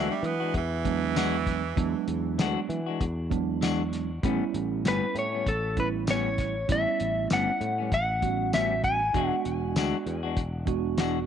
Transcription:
Already playing: clean electric guitar E3 G#3 D4 F#4 E5, tine electric piano F#3 G#3 B3 D4
0.11 tenor saxophone G3
0.23 fretless electric bass E3, tenor saxophone B3, closed hi-hat
0.40 clean electric guitar G#3 D4 F#4
0.54 fretless electric bass E2, tenor saxophone E3, kick, closed hi-hat
0.84 tine electric piano F#3 G#3 B3 D4, kick, closed hi-hat
1.15 clean electric guitar E3 G#3 D4 F#4, snare, closed hi-hat, tambourine
1.47 kick, snare, closed hi-hat
1.76 fretless electric bass E2, tine electric piano F#3 G#3 B3 D4, kick, closed hi-hat
2.08 fretless electric bass E2, closed hi-hat
2.38 fretless electric bass D2, clean electric guitar E3 G#3 D4 F#4, snare, closed hi-hat, tambourine
2.69 fretless electric bass E3, closed hi-hat
2.86 clean electric guitar G#3 D4 F#4
3.01 fretless electric bass E2, kick, closed hi-hat
3.30 tine electric piano F#3 G#3 B3 D4, kick, closed hi-hat
3.61 clean electric guitar E3 G#3 D4 F#4, snare, closed hi-hat, tambourine
3.93 snare, closed hi-hat
4.23 fretless electric bass A1, clean electric guitar A2 G3 B3 C#4, tine electric piano G3 B3 C#4 E4, kick, closed hi-hat
4.54 fretless electric bass A1, closed hi-hat
4.84 fretless electric bass G1, clean electric guitar A2 G3 B3 C#4 B4, snare, closed hi-hat, tambourine
5.15 fretless electric bass A2, closed hi-hat
5.19 clean electric guitar C#5
5.32 clean electric guitar G3 B3 C#4
5.46 fretless electric bass A1, clean electric guitar A4, kick, closed hi-hat
5.76 tine electric piano G3 B3 C#4 E4, clean electric guitar B4, kick, closed hi-hat
6.07 clean electric guitar A2 G3 B3 C#4 C#5, snare, closed hi-hat, tambourine
6.38 kick, snare, closed hi-hat
6.68 fretless electric bass A1, tine electric piano G3 B3 C#4 E4, clean electric guitar E5, kick, closed hi-hat
7.00 fretless electric bass A1, closed hi-hat
7.30 fretless electric bass G1, clean electric guitar A2 G3 B3 C#4 F#5, snare, closed hi-hat, tambourine
7.61 fretless electric bass A2, closed hi-hat
7.78 clean electric guitar G3 B3 C#4
7.92 fretless electric bass A1, clean electric guitar F#5, kick, closed hi-hat
8.21 tine electric piano G3 B3 C#4 F#4, kick, closed hi-hat
8.53 clean electric guitar A2 G3 B3 C#4 E5, snare, closed hi-hat, tambourine
8.84 clean electric guitar G#5, kick, closed hi-hat
9.13 fretless electric bass E1, clean electric guitar E3 G#3 D4 F#4, tine electric piano G#3 B3 D4 F#4, kick, closed hi-hat
9.28 clean electric guitar F#5
9.45 fretless electric bass E1, closed hi-hat
9.76 fretless electric bass D2, clean electric guitar E3 G#3 D4 F#4, snare, closed hi-hat, tambourine
10.06 fretless electric bass E2, closed hi-hat
10.23 clean electric guitar G#3 D4 F#4
10.37 fretless electric bass E1, kick, closed hi-hat
10.66 tine electric piano G#3 B3 D4 F#4, kick, closed hi-hat
10.98 clean electric guitar E3 G#3 D4 F#4, snare, closed hi-hat, tambourine

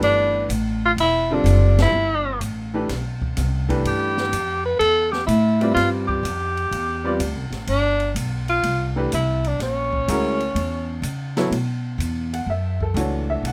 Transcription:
Already playing: upright piano E3 A3 D4 G4 B4
0.01 upright bass G1, tenor saxophone D4, ride
0.49 upright bass A1, hi-hat pedal, ride
0.85 tenor saxophone F4
0.97 upright bass E1, tenor saxophone E4, ride
1.31 upright piano D3 G3 C4 F4 A4, tenor saxophone D4
1.44 upright bass F#1, snare, hi-hat pedal, ride
1.78 snare, ride
1.83 tenor saxophone E4
1.92 upright bass G1
2.40 upright bass A1, hi-hat pedal, ride
2.74 upright piano E3 A3 D4 G4 B4
2.89 upright bass B1, snare, ride
3.22 kick
3.37 upright bass C2, snare, hi-hat pedal, ride
3.69 upright piano E3 A3 D4 G4 B4, kick, ride
3.85 upright bass G2, tenor saxophone G4, ride
4.17 snare
4.32 upright bass F2, hi-hat pedal, ride
4.65 tenor saxophone B4
4.79 upright bass E2, tenor saxophone A4, ride
5.11 tenor saxophone G4, snare
5.27 upright bass A2, tenor saxophone E4, hi-hat pedal, ride
5.61 upright piano G3 C4 F4 B4 D5, ride
5.74 upright bass G2, tenor saxophone F4, snare, ride
6.08 tenor saxophone G4, kick
6.23 upright bass F2, hi-hat pedal, ride
6.57 ride
6.71 upright bass E2, ride
7.04 upright piano G3 C4 F4 B4 D5
7.19 upright bass D2, hi-hat pedal, ride
7.35 upright bass C2
7.51 upright bass A1, snare, ride
7.67 upright bass G1, tenor saxophone D4, ride
8.00 ride
8.15 upright bass B1, hi-hat pedal, ride
8.48 tenor saxophone F4, ride
8.63 upright bass C2, ride
8.96 upright piano E3 A3 D4 G4 B4
9.12 upright bass C2, tenor saxophone E4, hi-hat pedal, ride
9.44 tenor saxophone D4, ride
9.59 upright bass A#1, tenor saxophone C#4, snare, ride
9.93 kick
10.08 upright bass D2, upright piano G#3 C#4 E4 F#4 A#4, hi-hat pedal, ride
10.40 ride
10.55 upright bass E2, ride
11.02 upright bass C#3, hi-hat pedal, ride
11.37 upright piano F#3 B3 E4 A4 C#5, snare, ride
11.51 upright bass B2, ride
11.98 upright bass E2, hi-hat pedal, ride
12.33 upright piano F#5, ride
12.46 upright bass F#2, upright piano E5
12.80 upright piano A4, kick
12.94 upright bass C#2, upright piano E3 A3 D4 F#4, hi-hat pedal, ride
12.99 upright piano C#5
13.30 upright piano E5
13.42 upright bass B1, ride
13.47 upright piano F#5

